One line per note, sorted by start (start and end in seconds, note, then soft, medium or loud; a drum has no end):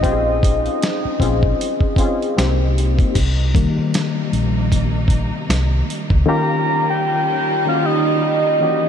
0.00 1.08 C4 loud
0.00 1.09 C#4 loud
0.00 2.34 D#5 medium
0.00 kick medium
0.04 0.66 A#1 loud
0.04 1.09 F4 loud
0.04 0.12 G4 loud
0.04 closed hi-hat medium
0.12 1.13 G#4 loud
0.43 kick loud
0.43 closed hi-hat medium
0.66 closed hi-hat soft
0.82 snare loud
0.82 closed hi-hat medium
1.05 muted fingered electric bass stroke soft
1.20 1.52 A#1 medium
1.20 1.90 C4 medium
1.20 1.90 C#4 medium
1.20 1.91 F4 medium
1.20 1.91 G#4 medium
1.20 kick medium
1.20 closed hi-hat medium
1.43 kick medium
1.61 closed hi-hat medium
1.80 kick medium
1.96 2.36 C4 medium
1.96 2.37 C#4 medium
1.96 2.38 F4 medium
1.96 kick medium
1.96 closed hi-hat medium
2.01 2.38 G#4 loud
2.22 closed hi-hat soft
2.36 3.00 C2 loud
2.36 3.07 A#3 medium
2.36 3.07 C4 medium
2.36 2.45 D4 medium
2.36 3.08 G4 medium
2.36 snare loud
2.36 closed hi-hat medium
2.45 3.11 D#4 medium
2.78 closed hi-hat medium
2.99 kick medium
2.99 closed hi-hat soft
3.15 3.65 C2 medium
3.15 6.24 C3 medium
3.15 6.24 G3 medium
3.15 6.24 A#3 medium
3.15 6.24 D#4 medium
3.15 kick medium
3.15 closed hi-hat medium
3.15 crash medium
3.54 4.08 D#3 medium
3.54 4.09 G3 soft
3.54 4.09 A#3 medium
3.54 kick loud
3.54 closed hi-hat medium
3.78 muted fingered electric bass stroke soft
3.94 snare loud
3.94 closed hi-hat medium
4.33 5.29 A#1 medium
4.33 closed hi-hat medium
4.72 kick medium
4.72 closed hi-hat medium
5.08 kick medium
5.08 closed hi-hat medium
5.49 5.80 C2 medium
5.49 snare loud
5.49 closed hi-hat medium
5.90 closed hi-hat medium
6.10 6.24 C#2 medium
6.10 kick loud
6.26 7.46 D#3 loud
6.26 8.58 D#3 medium
6.26 8.89 G3 medium
6.26 7.47 A#3 medium
6.26 8.58 C#4 medium
6.26 7.47 C#4 medium
6.26 8.58 F4 medium
6.26 7.48 F4 loud
6.26 7.48 G4 loud
6.26 6.85 A#5 loud
6.90 7.05 G5 loud
7.07 7.63 G5 loud
7.66 8.60 D#3 medium
7.66 8.59 A#3 medium
7.66 8.60 C#4 medium
7.66 8.61 F4 medium
7.66 7.71 F#4 medium
7.66 7.87 F5 medium
7.75 8.62 G4 medium
7.86 8.46 D#5 loud
8.47 8.89 D#5 loud
8.60 8.89 E3 medium
8.60 8.89 A#3 medium
8.60 8.89 C#4 medium
8.60 8.89 F#4 medium
8.60 8.89 G4 medium